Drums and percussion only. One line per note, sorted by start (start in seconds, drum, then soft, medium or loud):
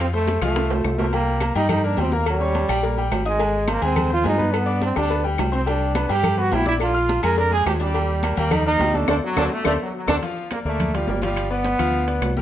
0.00 high conga soft
0.13 high bongo soft
0.13 high conga soft
0.27 high bongo medium
0.27 high conga medium
0.27 high timbale medium
0.27 low timbale medium
0.41 high bongo soft
0.41 high conga soft
0.41 high timbale medium
0.41 claves medium
0.56 high bongo medium
0.56 high conga soft
0.56 high timbale medium
0.70 high bongo soft
0.70 high conga soft
0.70 low timbale loud
0.84 high bongo soft
0.84 low bongo medium
0.84 high conga soft
0.84 low timbale medium
0.84 claves medium
0.98 high conga medium
0.98 low timbale medium
1.13 cowbell medium
1.13 high conga soft
1.13 low agogo loud
1.26 high conga soft
1.40 cowbell medium
1.40 high conga medium
1.40 low timbale medium
1.40 low agogo loud
1.40 claves medium
1.55 cowbell medium
1.55 high conga soft
1.55 low agogo medium
1.69 cowbell loud
1.69 high conga soft
1.69 low conga medium
1.69 low agogo loud
1.69 claves medium
1.83 high conga soft
1.97 cowbell medium
1.97 high conga medium
1.97 low timbale medium
1.97 low agogo medium
2.12 high conga medium
2.26 cowbell loud
2.26 high conga soft
2.26 low agogo loud
2.26 claves medium
2.41 high conga soft
2.55 cowbell medium
2.55 high conga medium
2.55 low timbale medium
2.55 low agogo medium
2.69 cowbell medium
2.69 high conga soft
2.69 low agogo loud
2.69 claves medium
2.83 cowbell loud
2.83 high conga soft
2.98 high conga soft
3.12 cowbell medium
3.12 high conga soft
3.12 low timbale medium
3.12 low agogo loud
3.12 claves medium
3.26 cowbell medium
3.40 cowbell loud
3.40 high conga soft
3.40 low agogo medium
3.54 high conga soft
3.68 cowbell medium
3.68 high conga medium
3.68 low timbale medium
3.68 low agogo loud
3.68 claves medium
3.82 cowbell medium
3.82 high conga soft
3.82 low agogo medium
3.96 cowbell loud
3.96 high conga soft
3.96 low conga medium
3.96 low agogo loud
3.96 claves medium
4.11 high conga soft
4.24 cowbell medium
4.24 high conga medium
4.24 low timbale medium
4.24 low agogo medium
4.40 high conga medium
4.53 cowbell loud
4.53 high conga soft
4.53 low agogo loud
4.53 claves medium
4.67 high conga soft
4.81 cowbell medium
4.81 high conga medium
4.81 low timbale medium
4.81 low agogo medium
4.96 cowbell medium
4.96 high bongo medium
4.96 high conga soft
4.96 low agogo loud
4.96 claves medium
5.10 cowbell loud
5.10 high conga soft
5.24 high conga soft
5.38 cowbell medium
5.38 low bongo medium
5.38 high conga soft
5.38 low timbale medium
5.38 low agogo loud
5.38 claves medium
5.53 cowbell medium
5.53 low bongo medium
5.67 cowbell medium
5.67 high conga soft
5.67 low agogo medium
5.81 high conga soft
5.95 cowbell medium
5.95 high conga loud
5.95 low timbale medium
5.95 low agogo loud
5.95 claves medium
6.09 cowbell medium
6.09 high conga soft
6.09 low agogo medium
6.23 cowbell loud
6.23 high conga soft
6.23 low conga medium
6.23 low agogo loud
6.23 claves medium
6.38 high conga soft
6.52 cowbell medium
6.52 high conga medium
6.52 low timbale medium
6.52 low agogo medium
6.66 high conga medium
6.80 cowbell loud
6.80 high conga soft
6.80 low agogo loud
6.80 claves medium
6.95 high conga soft
7.09 cowbell medium
7.09 high conga medium
7.09 low timbale medium
7.09 low agogo loud
7.23 cowbell medium
7.23 high conga soft
7.23 low agogo loud
7.23 claves medium
7.38 cowbell loud
7.38 high conga soft
7.52 high conga soft
7.66 cowbell medium
7.66 high conga soft
7.66 low timbale medium
7.66 low agogo loud
7.66 claves medium
7.80 cowbell medium
7.95 cowbell medium
7.95 high conga soft
7.95 low agogo medium
8.09 high conga soft
8.23 cowbell medium
8.23 high conga loud
8.23 low timbale medium
8.23 low agogo loud
8.23 claves medium
8.37 cowbell medium
8.37 high conga soft
8.37 low agogo medium
8.51 cowbell loud
8.51 high conga soft
8.51 low conga medium
8.51 low agogo loud
8.51 claves medium
8.66 high conga soft
8.79 cowbell medium
8.79 high conga medium
8.79 low timbale medium
8.79 low agogo medium
8.94 high conga medium
9.08 cowbell medium
9.08 high conga loud
9.08 high timbale loud
9.08 claves loud
9.36 cowbell loud
9.36 high conga medium
9.36 high timbale loud
9.36 claves medium
9.64 cowbell loud
9.64 high conga medium
9.64 high timbale loud
9.64 claves loud
10.08 cowbell loud
10.08 high conga loud
10.08 high timbale loud
10.08 claves loud
10.23 high conga soft
10.23 high timbale medium
10.38 high conga soft
10.51 high conga medium
10.51 high timbale medium
10.51 low timbale medium
10.51 claves medium
10.66 high conga soft
10.80 high conga soft
10.80 low conga medium
10.80 high timbale medium
10.80 claves medium
10.94 high conga soft
10.94 high timbale medium
11.08 high conga medium
11.08 low timbale medium
11.22 high conga medium
11.22 high timbale medium
11.36 high conga soft
11.36 high timbale medium
11.36 claves medium
11.50 high conga soft
11.64 high conga medium
11.64 high timbale medium
11.64 low timbale medium
11.79 high conga soft
11.79 high timbale medium
11.79 claves medium
11.94 high conga soft
12.08 high conga soft
12.08 high timbale medium
12.22 high conga soft
12.22 high timbale medium
12.22 low timbale medium
12.22 claves medium
12.37 high conga medium